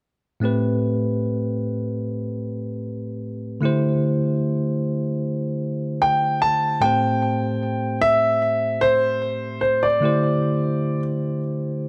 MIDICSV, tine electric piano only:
0, 0, Header, 1, 2, 480
1, 0, Start_track
1, 0, Key_signature, 0, "minor"
1, 0, Tempo, 800000
1, 256, Time_signature, 4, 2, 24, 8
1, 7132, End_track
2, 0, Start_track
2, 0, Title_t, "Tine electric piano"
2, 0, Program_c, 0, 4
2, 242, Note_on_c, 0, 45, 66
2, 249, Note_on_c, 0, 57, 62
2, 256, Note_on_c, 0, 60, 60
2, 263, Note_on_c, 0, 67, 58
2, 270, Note_on_c, 0, 71, 71
2, 359, Control_c, 0, 64, 127
2, 2145, Note_off_c, 0, 45, 0
2, 2148, Note_off_c, 0, 57, 0
2, 2152, Note_off_c, 0, 60, 0
2, 2155, Note_off_c, 0, 67, 0
2, 2159, Note_off_c, 0, 71, 0
2, 2164, Note_on_c, 0, 50, 68
2, 2170, Note_on_c, 0, 57, 60
2, 2178, Note_on_c, 0, 64, 64
2, 2184, Control_c, 0, 64, 0
2, 2185, Note_on_c, 0, 67, 62
2, 2192, Note_on_c, 0, 72, 78
2, 2296, Control_c, 0, 64, 127
2, 4066, Note_off_c, 0, 50, 0
2, 4069, Note_off_c, 0, 57, 0
2, 4073, Note_off_c, 0, 64, 0
2, 4076, Note_off_c, 0, 67, 0
2, 4080, Note_off_c, 0, 72, 0
2, 4084, Note_on_c, 0, 45, 62
2, 4091, Note_on_c, 0, 57, 60
2, 4098, Note_on_c, 0, 60, 56
2, 4104, Control_c, 0, 64, 0
2, 4105, Note_on_c, 0, 67, 57
2, 4113, Note_on_c, 0, 72, 70
2, 4200, Control_c, 0, 64, 127
2, 5986, Note_off_c, 0, 45, 0
2, 5989, Note_off_c, 0, 57, 0
2, 5993, Note_off_c, 0, 60, 0
2, 5996, Note_off_c, 0, 67, 0
2, 6000, Note_off_c, 0, 72, 0
2, 6003, Note_on_c, 0, 50, 63
2, 6011, Note_on_c, 0, 57, 58
2, 6018, Note_on_c, 0, 64, 56
2, 6024, Control_c, 0, 64, 0
2, 6025, Note_on_c, 0, 67, 58
2, 6032, Note_on_c, 0, 72, 70
2, 6132, Control_c, 0, 64, 127
2, 7132, Note_off_c, 0, 50, 0
2, 7132, Note_off_c, 0, 57, 0
2, 7132, Note_off_c, 0, 64, 0
2, 7132, Note_off_c, 0, 67, 0
2, 7132, Note_off_c, 0, 72, 0
2, 7132, End_track
0, 0, End_of_file